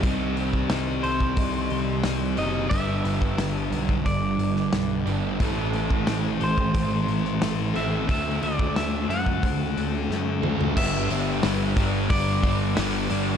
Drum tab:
CC |----------------|----------------|----------------|----------------|
HH |o-o-o-o-o-o-o-o-|o-o-o-o-o-o-o-o-|o-o-o-o-o-o-o-o-|o-o-o-o-o-o-----|
SD |----o-------o---|----o------oo---|----o------oo---|----o-------o---|
T2 |----------------|----------------|----------------|--------------o-|
FT |----------------|----------------|----------------|---------------o|
BD |o--o---oo-------|o--o---oo-------|o--o---oo-------|o--o---oo-------|

CC |x---------------|
HH |--o-o-o-o-o-o-o-|
SD |----o-------o---|
T2 |----------------|
FT |----------------|
BD |o-----o-o-o-----|